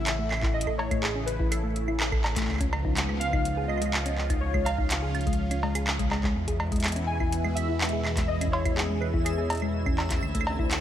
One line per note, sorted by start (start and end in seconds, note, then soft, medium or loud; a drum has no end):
0.00 2.46 A1 medium
0.00 6.32 C#3 medium
0.00 2.45 E3 medium
0.00 2.45 A3 medium
0.00 2.45 E4 loud
0.00 0.57 E5 loud
0.07 clap loud
0.07 closed hi-hat medium
0.07 claves medium
0.19 0.25 A3 medium
0.31 clap medium
0.31 claves medium
0.34 claves medium
0.40 0.49 E4 medium
0.40 kick loud
0.40 clap medium
0.40 claves soft
0.49 claves soft
0.52 0.79 D#5 loud
0.52 claves soft
0.61 closed hi-hat loud
0.67 0.78 A4 medium
0.67 kick medium
0.67 claves medium
0.78 1.03 C#5 loud
0.78 cowbell medium
0.91 1.02 A3 medium
0.91 kick loud
0.91 closed hi-hat medium
0.91 claves medium
1.02 1.28 G#4 medium
1.02 clap loud
1.15 1.26 C#4 medium
1.26 1.52 B4 medium
1.26 closed hi-hat medium
1.40 1.46 E4 medium
1.40 kick loud
1.50 1.96 A4 medium
1.50 closed hi-hat loud
1.50 claves medium
1.64 1.70 A3 medium
1.76 closed hi-hat medium
1.88 1.94 E4 medium
1.88 claves medium
2.00 clap loud
2.12 2.23 A4 medium
2.12 kick loud
2.12 claves medium
2.24 clap medium
2.24 cowbell medium
2.36 2.47 A3 medium
2.36 kick loud
2.36 clap medium
2.36 closed hi-hat loud
2.40 clap medium
2.44 clap soft
2.49 6.33 C#2 medium
2.49 6.32 F3 medium
2.49 4.40 B3 medium
2.49 6.32 F4 loud
2.49 clap soft
2.49 claves soft
2.51 clap soft
2.51 claves soft
2.53 claves soft
2.56 clap soft
2.56 claves soft
2.58 2.71 C#4 medium
2.58 kick medium
2.58 closed hi-hat medium
2.58 claves soft
2.73 cowbell medium
2.73 claves medium
2.85 2.91 D#4 medium
2.85 kick loud
2.97 clap loud
2.97 closed hi-hat medium
3.09 3.15 G#3 medium
3.09 claves medium
3.20 3.70 F5 loud
3.20 closed hi-hat medium
3.33 3.40 D#4 medium
3.33 kick loud
3.33 claves medium
3.45 closed hi-hat medium
3.57 3.68 G#4 medium
3.68 4.43 D#5 loud
3.68 claves medium
3.78 3.92 G#3 medium
3.78 claves soft
3.82 closed hi-hat medium
3.86 claves soft
3.94 clap loud
3.94 claves medium
4.06 4.16 C#4 medium
4.06 closed hi-hat medium
4.18 clap medium
4.30 4.36 D#4 medium
4.30 kick loud
4.30 closed hi-hat medium
4.30 claves soft
4.41 6.34 C#4 medium
4.41 4.66 C#5 loud
4.54 4.60 G#3 medium
4.54 kick medium
4.54 claves medium
4.65 6.07 F5 loud
4.65 closed hi-hat medium
4.65 cowbell medium
4.78 4.85 D#4 medium
4.78 kick loud
4.90 clap loud
4.90 closed hi-hat medium
5.03 5.13 G#4 medium
5.15 closed hi-hat soft
5.15 claves medium
5.21 closed hi-hat soft
5.27 5.37 G#3 medium
5.27 kick loud
5.27 closed hi-hat soft
5.33 closed hi-hat soft
5.51 5.61 C#4 medium
5.51 closed hi-hat medium
5.51 claves soft
5.63 5.75 G#3 medium
5.63 cowbell medium
5.75 5.86 G#4 medium
5.75 closed hi-hat medium
5.75 claves medium
5.87 clap loud
5.99 6.10 G#3 medium
5.99 kick loud
5.99 closed hi-hat medium
6.11 6.22 G#3 loud
6.11 clap medium
6.11 cowbell medium
6.11 claves soft
6.24 6.34 G#3 loud
6.24 kick loud
6.24 clap medium
6.36 10.20 E2 medium
6.36 10.19 B2 medium
6.36 10.19 E3 medium
6.36 10.81 E3 medium
6.36 10.19 G#3 medium
6.36 8.27 B3 medium
6.36 10.19 E4 loud
6.36 10.81 E6 medium
6.48 6.58 G#4 medium
6.48 kick medium
6.48 closed hi-hat medium
6.60 cowbell medium
6.60 claves soft
6.72 6.82 G#3 medium
6.72 kick loud
6.72 closed hi-hat soft
6.76 closed hi-hat soft
6.80 closed hi-hat medium
6.84 clap loud
6.84 closed hi-hat medium
6.84 claves medium
6.88 closed hi-hat medium
6.92 closed hi-hat medium
6.96 7.07 C#4 medium
6.96 closed hi-hat medium
7.07 7.57 G#5 loud
7.20 7.27 E4 medium
7.20 kick loud
7.20 claves medium
7.32 closed hi-hat medium
7.45 7.51 G#3 medium
7.45 claves medium
7.55 8.31 E5 loud
7.55 closed hi-hat medium
7.69 7.75 E4 medium
7.81 clap loud
7.81 closed hi-hat soft
7.81 claves medium
7.85 closed hi-hat soft
7.89 closed hi-hat soft
7.93 8.03 G#4 medium
8.05 clap medium
8.05 claves medium
8.17 8.28 G#3 medium
8.17 kick loud
8.17 clap medium
8.17 closed hi-hat medium
8.28 10.21 C#4 medium
8.28 8.53 D#5 loud
8.41 8.52 C#4 medium
8.41 closed hi-hat medium
8.41 claves medium
8.47 kick medium
8.52 8.78 C#5 loud
8.52 cowbell medium
8.65 8.72 E4 medium
8.65 kick loud
8.65 closed hi-hat soft
8.65 claves medium
8.76 9.02 G#4 medium
8.76 clap loud
8.90 8.96 G#3 medium
9.00 9.12 B4 medium
9.00 claves medium
9.14 9.20 E4 medium
9.14 kick loud
9.24 9.70 G#4 medium
9.24 closed hi-hat medium
9.24 claves medium
9.38 9.49 G#4 medium
9.50 closed hi-hat soft
9.50 cowbell loud
9.53 closed hi-hat soft
9.55 closed hi-hat soft
9.57 closed hi-hat soft
9.62 9.73 G#3 medium
9.62 claves medium
9.86 9.97 C#4 medium
9.86 kick loud
9.86 claves medium
9.98 clap medium
9.98 cowbell loud
10.11 10.17 E4 medium
10.11 kick loud
10.11 clap medium
10.11 closed hi-hat medium
10.23 10.81 D2 medium
10.23 10.81 C3 medium
10.23 10.81 D3 medium
10.23 10.81 A3 medium
10.23 10.81 C4 medium
10.23 10.81 D4 loud
10.23 claves medium
10.35 10.41 A3 medium
10.35 kick medium
10.35 closed hi-hat medium
10.41 claves medium
10.47 cowbell medium
10.59 10.65 E4 medium
10.59 kick loud
10.71 clap loud
10.71 closed hi-hat medium